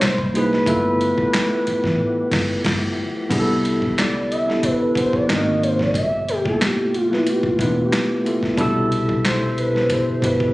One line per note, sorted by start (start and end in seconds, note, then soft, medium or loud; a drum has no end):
0.00 0.59 C2 medium
0.00 0.66 A#2 medium
0.00 0.66 G#3 medium
0.00 0.64 E4 medium
0.00 0.32 C5 loud
0.00 snare loud
0.00 clap medium
0.00 closed hi-hat medium
0.18 kick medium
0.33 0.62 A#3 medium
0.33 0.63 D#4 medium
0.33 0.63 E4 medium
0.33 0.63 F#4 medium
0.33 0.64 G#4 medium
0.33 2.62 B4 loud
0.33 closed hi-hat medium
0.53 snare soft
0.66 1.11 G1 loud
0.66 3.28 F3 medium
0.66 1.80 A3 loud
0.66 3.28 A3 medium
0.66 0.74 A#3 medium
0.66 3.28 B3 medium
0.66 1.81 E4 medium
0.66 1.81 F4 medium
0.66 3.28 G4 medium
0.66 1.81 A4 loud
0.66 kick loud
0.66 closed hi-hat medium
0.73 1.83 B3 medium
1.01 closed hi-hat medium
1.18 kick medium
1.34 snare loud
1.34 clap loud
1.34 closed hi-hat medium
1.67 muted fingered electric bass stroke soft
1.67 closed hi-hat medium
1.84 1.97 A1 medium
1.84 kick medium
1.84 snare soft
2.31 2.55 G1 medium
2.31 kick loud
2.31 snare loud
2.31 crash medium
2.65 2.88 G1 medium
2.65 kick medium
2.65 snare loud
2.65 crash medium
3.30 5.10 C2 medium
3.30 5.27 D3 medium
3.30 4.28 B3 loud
3.30 5.27 B3 medium
3.30 4.29 D4 medium
3.30 4.29 E4 medium
3.30 5.27 E4 medium
3.30 4.30 G4 medium
3.30 3.39 G#4 medium
3.30 kick loud
3.30 closed hi-hat medium
3.30 crash medium
3.40 4.33 A4 loud
3.65 closed hi-hat medium
3.82 kick medium
3.98 4.33 D5 loud
3.98 snare loud
3.98 clap medium
3.98 closed hi-hat medium
4.31 4.65 E5 loud
4.31 closed hi-hat soft
4.47 4.89 B3 medium
4.47 4.89 D4 medium
4.47 4.89 E4 medium
4.47 4.90 G4 medium
4.47 4.90 A4 medium
4.47 snare soft
4.63 4.96 B4 medium
4.63 kick medium
4.63 closed hi-hat medium
4.95 5.28 B3 medium
4.95 5.29 D4 medium
4.95 5.29 E4 medium
4.95 5.30 G4 medium
4.95 5.30 B4 medium
4.95 5.16 C5 loud
4.95 kick medium
4.95 closed hi-hat medium
5.13 5.29 D5 medium
5.13 kick medium
5.27 5.95 G#1 medium
5.27 5.93 C3 medium
5.27 5.93 A#3 medium
5.27 5.85 A#3 medium
5.27 5.85 C4 medium
5.27 5.86 D#4 medium
5.27 5.93 F#4 medium
5.27 5.86 F#4 medium
5.27 5.64 D#5 medium
5.27 snare loud
5.27 clap medium
5.27 closed hi-hat medium
5.31 5.87 A#4 medium
5.63 5.82 C5 medium
5.63 closed hi-hat medium
5.79 5.98 D5 loud
5.79 kick medium
5.79 snare soft
5.92 7.23 G1 loud
5.92 10.54 B2 medium
5.92 8.55 F3 medium
5.92 8.55 A3 medium
5.92 8.55 G4 medium
5.92 6.28 E5 loud
5.92 kick loud
5.92 closed hi-hat medium
6.28 6.45 G4 loud
6.28 closed hi-hat medium
6.44 7.00 A3 medium
6.44 6.51 A#3 soft
6.44 7.01 E4 medium
6.44 7.01 F4 medium
6.44 6.61 A4 medium
6.44 7.02 A4 medium
6.44 kick medium
6.52 7.04 B3 medium
6.61 6.96 G4 medium
6.61 snare loud
6.61 clap medium
6.61 closed hi-hat medium
6.94 7.12 F4 medium
6.94 closed hi-hat medium
7.11 7.52 A3 medium
7.11 7.53 B3 medium
7.11 7.53 E4 medium
7.11 7.30 E4 medium
7.11 7.54 F4 medium
7.11 7.54 B4 medium
7.11 snare soft
7.27 7.48 G4 medium
7.27 closed hi-hat medium
7.43 7.60 F4 medium
7.43 muted fingered electric bass stroke soft
7.43 kick loud
7.58 7.88 E1 medium
7.58 8.16 A3 medium
7.58 8.16 B3 medium
7.58 7.77 D4 medium
7.58 8.17 E4 medium
7.58 8.17 F4 medium
7.58 8.17 B4 medium
7.58 kick medium
7.58 closed hi-hat medium
7.79 8.40 G4 medium
7.93 snare loud
7.93 clap medium
7.93 closed hi-hat medium
8.24 8.53 A3 medium
8.24 8.54 B3 medium
8.24 8.54 E4 medium
8.24 8.54 F4 medium
8.24 8.55 A4 medium
8.24 closed hi-hat medium
8.43 kick medium
8.43 snare soft
8.57 9.86 C2 loud
8.57 9.56 B2 loud
8.57 10.54 D3 medium
8.57 9.56 D4 loud
8.57 9.57 E4 medium
8.57 9.57 G4 loud
8.57 9.57 A4 loud
8.57 10.54 E5 medium
8.57 kick loud
8.57 closed hi-hat medium
8.92 closed hi-hat medium
9.09 kick medium
9.25 9.59 C5 loud
9.25 snare loud
9.25 clap medium
9.25 closed hi-hat medium
9.58 9.93 B4 medium
9.58 closed hi-hat medium
9.74 10.16 B2 medium
9.74 10.16 D4 medium
9.74 10.17 E4 medium
9.74 10.17 G4 medium
9.74 10.17 C5 medium
9.74 snare soft
9.90 10.23 C5 loud
9.90 kick loud
9.90 closed hi-hat medium
10.10 muted fingered electric bass stroke soft
10.22 10.51 G1 medium
10.22 10.54 B2 medium
10.22 10.54 D4 medium
10.22 10.54 E4 medium
10.22 10.54 G4 medium
10.22 10.54 B4 medium
10.22 kick medium
10.22 closed hi-hat medium
10.40 kick medium